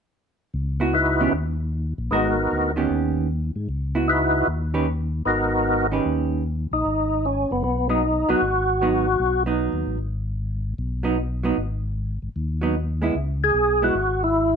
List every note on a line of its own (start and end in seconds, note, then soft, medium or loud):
0.54 1.28 C#2 medium
0.80 0.92 B3 medium
0.80 0.92 E4 medium
0.80 0.92 F#4 medium
0.93 1.32 D#4 soft
0.93 1.33 E4 soft
0.93 1.33 F#4 soft
0.93 1.33 B4 medium
1.21 1.32 D#3 medium
1.21 1.32 B3 medium
1.21 1.32 C#4 medium
1.21 1.32 G4 medium
1.32 1.94 D#2 medium
1.98 2.10 A#1 medium
2.11 2.48 G#1 medium
2.11 2.35 G#3 medium
2.11 2.71 B3 soft
2.11 2.35 B3 medium
2.11 2.71 D#4 soft
2.11 2.72 F#4 soft
2.11 2.35 F#4 soft
2.11 2.35 A#4 medium
2.11 2.72 A#4 soft
2.52 2.88 D2 medium
2.76 3.26 D#3 medium
2.76 3.27 B3 medium
2.76 3.27 C#4 soft
2.76 3.27 G4 medium
2.90 3.51 D#2 medium
3.56 3.68 G#2 medium
3.69 4.44 C#2 medium
3.95 4.07 B3 medium
3.95 4.07 E4 medium
3.95 4.07 F#4 medium
4.08 4.47 D#4 medium
4.08 4.48 E4 soft
4.08 4.48 F#4 soft
4.08 4.48 B4 medium
4.47 5.22 D#2 medium
4.74 4.86 D#3 soft
4.74 4.86 C#4 soft
4.74 4.86 G4 medium
4.74 4.86 B4 medium
5.25 6.01 G#1 medium
5.25 5.86 B3 medium
5.25 5.87 D#4 medium
5.25 5.87 F#4 medium
5.25 5.87 A#4 medium
5.91 6.42 D#3 medium
5.91 6.42 C#4 medium
5.91 6.42 G4 medium
5.91 6.43 B4 medium
6.06 6.67 D#2 medium
6.71 6.83 A#1 medium
6.71 7.26 D#4 medium
6.85 7.46 G#1 medium
7.25 7.51 C#4 medium
7.51 7.63 F#1 medium
7.51 7.63 B3 medium
7.63 8.25 B1 medium
7.63 7.88 B3 medium
7.89 8.01 F#3 soft
7.89 8.01 B3 medium
7.89 8.30 D#4 medium
7.89 8.02 D#4 soft
8.29 8.35 B1 soft
8.29 8.40 F#3 medium
8.29 8.41 B3 medium
8.29 8.41 D#4 medium
8.29 9.43 F#4 medium
8.42 9.16 G#1 medium
8.82 9.05 F#3 medium
8.82 9.05 B3 medium
8.82 9.05 D#4 medium
9.20 9.69 B1 medium
9.46 9.96 F#3 soft
9.46 9.97 B3 medium
9.46 9.97 D#4 medium
9.73 9.85 D#2 medium
9.86 9.98 A1 medium
9.98 10.74 G#1 medium
10.78 11.53 B1 medium
11.03 11.16 F#3 medium
11.03 11.16 B3 medium
11.03 11.17 D#4 medium
11.43 11.56 F#3 medium
11.43 11.56 B3 medium
11.43 11.57 D#4 medium
11.57 12.19 G#1 medium
12.22 12.29 G#1 soft
12.36 13.11 D#2 medium
12.61 12.74 F#3 medium
12.61 12.75 B3 medium
12.61 12.75 D#4 medium
13.02 13.14 G#3 soft
13.02 13.14 B3 medium
13.02 13.15 E4 medium
13.15 13.52 C#2 medium
13.44 13.83 G#4 loud
13.54 13.91 B1 medium
13.82 13.93 G#3 medium
13.82 13.94 B3 soft
13.82 13.94 E4 medium
13.82 14.23 F#4 medium
13.94 14.56 G#1 medium
14.24 14.56 E4 medium